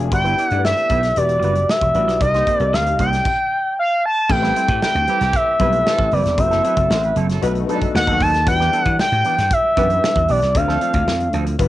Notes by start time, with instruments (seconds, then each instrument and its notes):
Already playing: slap bass F1, grand piano A#3 D4 F4 F#4 G#4 C5
0.00 closed hi-hat
0.12 slap bass G1, grand piano B3 D4 E4 G4 D5, analog synth lead G5, muted clean electric guitar stroke, kick, closed hi-hat
0.24 clean electric guitar B3 E4 G4 B4, closed hi-hat
0.37 clean electric guitar B3 E4 G4 D5, closed hi-hat
0.48 slap bass G2, grand piano A3 D4 E4, analog synth lead F#5, muted clean electric guitar stroke, closed hi-hat
0.52 grand piano G4 D5
0.58 grand piano B3
0.65 analog synth lead E5, snare
0.77 muted clean electric guitar stroke, closed hi-hat
0.89 slap bass B1, clean electric guitar B3 E4 G4 B4, kick, closed hi-hat
1.03 muted clean electric guitar stroke, snare, closed hi-hat
1.16 slap bass E1, grand piano B3 E4 F#4 G4 D5, analog synth lead D5, closed hi-hat
1.29 muted clean electric guitar stroke, closed hi-hat
1.42 slap bass F#1, clean electric guitar G3 D4 F#4 B4, closed hi-hat
1.55 muted clean electric guitar stroke, closed hi-hat
1.69 analog synth lead E5, snare
1.81 slap bass E1, muted clean electric guitar stroke, kick, closed hi-hat
1.94 slap bass A1, clean electric guitar G3 D4 F#4 B4, grand piano B3 E4 F#4 G4 D5, closed hi-hat
2.08 slap bass B1, muted clean electric guitar stroke, snare, closed hi-hat
2.20 slap bass C2, grand piano C4 D#4 G4 A#4 D#5, analog synth lead D#5, muted clean electric guitar stroke, kick, closed hi-hat
2.34 clean electric guitar A#3 D#4 G4 C5, snare, closed hi-hat
2.47 clean electric guitar A#3 D#4 G4 C5, kick, closed hi-hat
2.57 slap bass C2, grand piano C4 D#4 G4, analog synth lead D5, closed hi-hat
2.61 grand piano A#4 D#5
2.73 slap bass D2, analog synth lead F5, snare
2.86 muted clean electric guitar stroke, closed hi-hat
2.99 slap bass C2, clean electric guitar A#3 D#4 G4 C5, analog synth lead G5, kick, closed hi-hat
3.12 muted clean electric guitar stroke, snare, closed hi-hat
3.25 kick, crash
3.79 analog synth lead F5
4.06 analog synth lead A5
4.29 slap bass A1, grand piano A3 C4 E4 G4 B4, analog synth lead G5, muted clean electric guitar stroke, kick, crash
4.42 horn section C3 B3 E4, clean electric guitar G3 C4 E4 B4, snare
4.56 clean electric guitar G3 C4 E4 C5, closed hi-hat
4.68 slap bass A2, horn section E3 C4 G4, muted clean electric guitar stroke, kick, closed hi-hat
4.81 horn section G3 E4 B4, analog synth lead G5, snare
4.95 slap bass D2, muted clean electric guitar stroke, closed hi-hat
5.07 horn section E3 C4 G4, clean electric guitar G3 C4 E4 B4, closed hi-hat
5.21 slap bass C2, muted clean electric guitar stroke, snare, closed hi-hat
5.33 analog synth lead E5, kick, closed hi-hat
5.47 muted clean electric guitar stroke
5.60 slap bass B1, clean electric guitar G3 C4 E4 B4, grand piano A3 C4 E4 G4 B4, kick, closed hi-hat
5.72 muted clean electric guitar stroke, closed hi-hat
5.87 horn section E3 C4 A4, snare
5.98 slap bass A1, muted clean electric guitar stroke, kick
6.11 slap bass F#1, clean electric guitar G3 C4 E4 B4, analog synth lead D5, open hi-hat
6.25 slap bass E1, muted clean electric guitar stroke, snare, closed hi-hat
6.38 slap bass F#1, grand piano A3 C4 E4 F#4 B4, analog synth lead E5, muted clean electric guitar stroke, kick, closed hi-hat
6.45 grand piano C5
6.51 clean electric guitar F#3 C4 E4 A4, snare, closed hi-hat
6.63 clean electric guitar F#3 C4 E4 A4, horn section B3 G4 B4, closed hi-hat
6.77 slap bass F#1, horn section F#3 E4 A4, muted clean electric guitar stroke, kick, closed hi-hat
6.90 slap bass A1, horn section A3 F#4 C5, snare
7.03 horn section B3 G4 B4, muted clean electric guitar stroke, closed hi-hat
7.15 slap bass F#1, clean electric guitar F#3 C4 E4 A4, closed hi-hat
7.29 horn section F#3 E4 A4, muted clean electric guitar stroke, snare, closed hi-hat
7.42 slap bass B1, horn section F#3 D#4 B4, grand piano A3 B3 D#4 F#4 B4, closed hi-hat
7.55 muted clean electric guitar stroke, closed hi-hat
7.68 clean electric guitar F#3 B3 D#4 A4, horn section F#3 D#4 A4, grand piano A3 B3 D4 F#4 B4, closed hi-hat
7.75 grand piano D#4
7.81 muted clean electric guitar stroke, kick, closed hi-hat
7.94 slap bass D#2, analog synth lead F#5, muted clean electric guitar stroke, snare
8.07 horn section D#3 B3 F#4, clean electric guitar F#3 B3 D#4 A4, kick, closed hi-hat
8.20 slap bass D#2, clean electric guitar F#3 B3 D#4 A4, analog synth lead A5, kick, open hi-hat
8.34 muted clean electric guitar stroke, snare, closed hi-hat
8.46 slap bass E2, grand piano F#3 B3 D4 E4 B4, analog synth lead G5, muted clean electric guitar stroke, kick, closed hi-hat
8.53 grand piano G3
8.59 clean electric guitar E3 B3 D4 G4, snare
8.72 clean electric guitar E3 B3 D4 A4, closed hi-hat
8.83 slap bass E3, analog synth lead F#5, kick, closed hi-hat
8.99 analog synth lead G5, snare
9.12 slap bass A2, muted clean electric guitar stroke, closed hi-hat
9.24 clean electric guitar E3 B3 D4 G4, closed hi-hat
9.37 slap bass G2, muted clean electric guitar stroke, snare, closed hi-hat
9.51 analog synth lead E5, kick, closed hi-hat
9.63 muted clean electric guitar stroke
9.77 slap bass F#2, clean electric guitar E3 B3 D4 G4, grand piano G3 B3 D4 E4 B4, kick, closed hi-hat
9.90 muted clean electric guitar stroke, closed hi-hat
10.04 snare
10.16 slap bass E2, muted clean electric guitar stroke, kick, closed hi-hat
10.28 slap bass B1, clean electric guitar E3 B3 D4 G4, analog synth lead D5, open hi-hat
10.42 slap bass C2, muted clean electric guitar stroke, snare, closed hi-hat
10.55 slap bass D2, grand piano A3 C4 D4 F4 C5, analog synth lead F5, muted clean electric guitar stroke, kick, closed hi-hat
10.68 clean electric guitar F3 C4 D4 A4, snare
10.81 clean electric guitar F3 C4 D4 A4, closed hi-hat
10.93 slap bass D2, kick, closed hi-hat
11.07 slap bass F2, snare
11.20 muted clean electric guitar stroke, closed hi-hat
11.33 slap bass D2, clean electric guitar F3 C4 D4 A4, closed hi-hat
11.46 muted clean electric guitar stroke, closed hi-hat
11.59 slap bass G1, grand piano G3 B3 D4 F4 B4, kick, closed hi-hat